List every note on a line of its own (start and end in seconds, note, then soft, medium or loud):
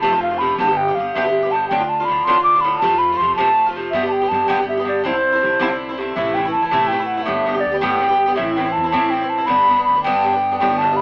0.00 0.55 F1 medium
0.00 0.13 C3 loud
0.00 0.13 F3 loud
0.00 0.13 A3 loud
0.00 0.20 A5 loud
0.05 0.11 F4 loud
0.12 0.33 F3 soft
0.12 0.31 A3 soft
0.12 0.29 F4 medium
0.22 0.40 F5 loud
0.31 0.40 F3 soft
0.31 0.41 A3 soft
0.31 0.40 F4 medium
0.38 0.59 C3 medium
0.38 0.59 F3 medium
0.38 0.58 B5 loud
0.43 0.60 A3 medium
0.43 0.60 F4 medium
0.58 0.94 G1 loud
0.58 0.69 G2 medium
0.58 0.69 D3 medium
0.58 0.69 B3 medium
0.58 0.67 G4 medium
0.58 0.78 A5 loud
0.68 0.89 D3 soft
0.68 0.88 B3 medium
0.68 0.87 G4 medium
0.77 0.96 G5 loud
0.88 0.97 D3 soft
0.88 0.98 B3 soft
0.88 0.97 G4 medium
0.95 1.14 G1 medium
0.95 1.14 G2 soft
0.95 1.15 D3 soft
0.95 1.09 F5 loud
0.99 1.15 B3 medium
0.99 1.16 G4 medium
1.09 1.15 F5 medium
1.14 1.68 G1 medium
1.14 1.25 G2 medium
1.14 1.25 D3 loud
1.14 1.25 B3 medium
1.14 1.24 G4 loud
1.14 1.53 E5 loud
1.25 1.45 D3 soft
1.25 1.44 B3 medium
1.25 1.41 G4 medium
1.43 1.52 D3 soft
1.43 1.52 B3 soft
1.43 1.52 G4 medium
1.51 1.70 G2 medium
1.51 1.70 D3 medium
1.51 1.71 B3 medium
1.51 1.72 G4 medium
1.51 1.68 A5 loud
1.68 2.06 D2 loud
1.68 1.81 A2 medium
1.68 1.81 D3 medium
1.68 1.81 D4 medium
1.68 1.90 G5 loud
1.73 1.79 F4 medium
1.80 2.01 D3 soft
1.80 2.00 D4 soft
1.80 1.99 F4 soft
1.89 2.06 A5 loud
2.00 2.08 D3 medium
2.00 2.09 D4 soft
2.00 2.09 F4 medium
2.05 2.26 A2 medium
2.05 2.26 B5 loud
2.09 2.26 D2 medium
2.09 2.27 D3 medium
2.09 2.27 D4 medium
2.09 2.28 F4 medium
2.25 2.79 D2 medium
2.25 2.37 A2 medium
2.25 2.37 D3 medium
2.25 2.43 C6 loud
2.29 2.38 D4 loud
2.29 2.35 F4 loud
2.37 2.57 D3 soft
2.37 2.57 D4 soft
2.37 2.54 F4 medium
2.43 2.62 D6 loud
2.55 2.64 D3 soft
2.55 2.65 D4 soft
2.55 2.64 F4 medium
2.61 2.81 A2 medium
2.61 2.78 B5 loud
2.65 2.83 D3 medium
2.65 2.83 D4 medium
2.65 2.83 F4 medium
2.79 3.18 F2 loud
2.79 2.92 C3 medium
2.79 3.00 A5 loud
2.83 2.92 F3 medium
2.83 2.93 A3 loud
2.83 2.92 F4 loud
2.93 3.13 F3 soft
2.93 3.12 A3 soft
2.93 3.11 F4 medium
2.99 3.18 B5 loud
3.12 3.20 F3 soft
3.12 3.21 A3 medium
3.12 3.21 F4 medium
3.17 3.37 F2 medium
3.17 3.36 C3 medium
3.17 3.35 C6 loud
3.21 3.37 F3 medium
3.21 3.38 A3 medium
3.21 3.39 F4 medium
3.35 3.90 F2 medium
3.35 3.48 C3 loud
3.35 3.48 F3 loud
3.35 3.67 A5 loud
3.40 3.48 A3 loud
3.40 3.46 F4 loud
3.47 3.68 F3 soft
3.47 3.67 A3 medium
3.47 3.65 F4 medium
3.66 3.76 F3 soft
3.66 3.76 A3 soft
3.66 3.75 F4 medium
3.76 3.93 C3 medium
3.76 3.94 F3 medium
3.76 3.94 A3 medium
3.76 3.95 F4 medium
3.91 4.03 G2 medium
3.91 4.29 G2 loud
3.91 4.04 D3 medium
3.91 4.04 B3 medium
3.91 4.06 E5 loud
3.95 4.02 G4 medium
4.03 4.23 D3 medium
4.03 4.22 B3 soft
4.03 4.20 G4 medium
4.08 4.30 G5 loud
4.08 4.14 A5 medium
4.21 4.31 D3 soft
4.21 4.32 B3 medium
4.21 4.31 G4 medium
4.29 4.48 G2 loud
4.29 4.47 G2 medium
4.29 4.48 D3 medium
4.29 4.50 A5 loud
4.34 4.49 B3 medium
4.34 4.49 G4 medium
4.48 4.58 G2 loud
4.48 5.01 G2 medium
4.48 4.59 D3 loud
4.48 4.59 B3 loud
4.48 4.58 G4 loud
4.48 4.68 G5 loud
4.59 4.79 D3 soft
4.59 4.78 B3 soft
4.59 4.76 G4 medium
4.68 4.85 E5 loud
4.77 4.86 D3 soft
4.77 4.86 B3 medium
4.77 4.87 G4 medium
4.85 5.02 G2 medium
4.85 5.04 D3 medium
4.85 5.05 B3 medium
4.85 5.05 G4 medium
4.85 5.04 D5 medium
5.04 5.40 C2 loud
5.04 5.14 G2 medium
5.04 5.15 D3 medium
5.04 5.14 C4 medium
5.04 5.12 E4 medium
5.04 5.77 C5 loud
5.13 5.34 D3 soft
5.13 5.33 C4 soft
5.13 5.31 E4 medium
5.32 5.42 D3 medium
5.32 5.42 C4 medium
5.32 5.42 E4 medium
5.42 5.60 C2 medium
5.42 5.58 G2 medium
5.42 5.59 D3 medium
5.42 5.60 C4 medium
5.42 5.61 E4 medium
5.60 6.12 C2 loud
5.60 5.70 G2 loud
5.60 5.70 D3 loud
5.60 5.70 C4 loud
5.60 5.68 E4 loud
5.70 5.90 D3 soft
5.70 5.89 C4 medium
5.70 5.88 E4 medium
5.89 5.97 D3 soft
5.89 5.99 C4 medium
5.89 5.98 E4 medium
5.98 6.15 G2 medium
5.98 6.16 D3 medium
5.98 6.17 C4 medium
5.98 6.17 E4 medium
6.16 6.52 A1 loud
6.16 6.34 C3 medium
6.16 6.35 E3 medium
6.16 6.36 A3 medium
6.16 6.37 E4 medium
6.16 6.36 E5 loud
6.34 6.44 C3 medium
6.34 6.45 E3 medium
6.34 6.46 A3 medium
6.34 6.51 G5 loud
6.39 6.44 E4 medium
6.45 6.64 E3 soft
6.45 6.63 A3 medium
6.45 6.61 E4 medium
6.52 6.71 E2 medium
6.52 6.67 A5 medium
6.62 6.71 E3 soft
6.62 6.72 A3 medium
6.62 6.71 E4 medium
6.68 6.89 C3 loud
6.68 6.89 A5 loud
6.73 7.24 A2 loud
6.73 6.91 E3 loud
6.73 6.92 A3 medium
6.73 6.93 E4 loud
6.88 7.00 C3 medium
6.88 7.08 G5 loud
6.92 7.01 E3 medium
6.92 7.00 A3 medium
6.92 6.99 E4 medium
7.00 7.19 E3 soft
7.00 7.18 A3 soft
7.00 7.16 E4 medium
7.06 7.18 F#5 medium
7.17 7.26 E3 soft
7.17 7.28 A3 medium
7.17 7.27 E4 medium
7.17 7.24 F#5 medium
7.23 7.45 A2 medium
7.23 7.45 D3 medium
7.23 7.62 E5 loud
7.28 7.63 G1 loud
7.28 7.47 B3 medium
7.28 7.47 G4 medium
7.46 7.56 A2 medium
7.46 7.56 D3 medium
7.46 7.55 B3 medium
7.46 7.53 G4 medium
7.54 7.74 D3 soft
7.54 7.73 B3 soft
7.54 7.70 G4 medium
7.60 7.80 D5 medium
7.65 7.82 D2 loud
7.72 7.81 D3 soft
7.72 7.82 B3 medium
7.72 7.82 G4 medium
7.80 8.35 G2 loud
7.80 7.99 A2 loud
7.80 8.00 D3 loud
7.80 8.01 B3 loud
7.80 8.02 G4 loud
7.80 8.33 G5 loud
8.00 8.11 A2 medium
8.00 8.11 D3 medium
8.00 8.09 B3 medium
8.00 8.07 G4 medium
8.09 8.28 D3 soft
8.09 8.26 B3 medium
8.09 8.25 G4 medium
8.26 8.37 D3 medium
8.26 8.37 B3 medium
8.26 8.37 G4 medium
8.36 8.74 A1 loud
8.36 8.55 A2 medium
8.36 8.56 E3 medium
8.36 8.58 C4 medium
8.36 8.58 E4 loud
8.36 8.55 E5 loud
8.56 8.66 A2 medium
8.56 8.67 E3 medium
8.56 8.66 C4 medium
8.56 8.74 G5 loud
8.60 8.64 E4 medium
8.65 8.84 C4 medium
8.65 8.83 E4 medium
8.69 8.86 E3 medium
8.69 8.89 A5 loud
8.77 8.93 E2 loud
8.84 8.92 E3 soft
8.84 8.92 C4 medium
8.84 8.94 E4 medium
8.90 9.10 A2 medium
8.90 9.12 E3 loud
8.90 9.12 C4 loud
8.90 9.12 A5 loud
8.95 9.47 A2 medium
8.95 9.13 E4 loud
9.10 9.22 A2 medium
9.10 9.22 E3 medium
9.10 9.22 C4 medium
9.10 9.31 G5 loud
9.15 9.20 E4 medium
9.21 9.40 E3 soft
9.21 9.39 C4 soft
9.21 9.37 E4 medium
9.29 9.48 A5 loud
9.38 9.48 E3 soft
9.38 9.49 C4 soft
9.38 9.48 E4 medium
9.46 9.66 G2 medium
9.46 9.67 D3 medium
9.46 9.68 B3 medium
9.46 9.70 D4 medium
9.46 9.84 B5 loud
9.51 9.86 G1 loud
9.67 9.78 G2 medium
9.67 9.78 D3 medium
9.67 9.77 B3 medium
9.67 9.75 D4 medium
9.76 9.96 D3 soft
9.76 9.95 B3 medium
9.76 9.93 D4 medium
9.84 10.02 B5 loud
9.89 10.05 D2 loud
9.94 10.05 D3 soft
9.94 10.05 B3 soft
9.94 10.05 D4 medium
10.03 10.22 G2 medium
10.03 10.59 G2 loud
10.03 10.24 D3 medium
10.03 10.25 B3 loud
10.03 10.26 D4 loud
10.03 10.56 G5 loud
10.24 10.33 G2 medium
10.24 10.35 D3 medium
10.24 10.34 B3 medium
10.24 10.32 D4 medium
10.33 10.53 D3 soft
10.33 10.51 B3 soft
10.33 10.50 D4 medium
10.51 10.61 D3 soft
10.51 10.60 B3 soft
10.51 10.61 D4 medium
10.58 10.79 A2 medium
10.58 10.80 G3 medium
10.58 10.81 B3 medium
10.58 10.82 D4 medium
10.58 10.80 G5 loud
10.62 10.97 G1 loud
10.78 10.90 A2 medium
10.78 10.90 G3 medium
10.78 10.98 A5 loud
10.83 10.90 B3 medium
10.83 10.88 D4 medium
10.89 11.02 G3 medium
10.89 11.02 B3 soft
10.89 11.02 D4 medium
10.96 11.02 B5 loud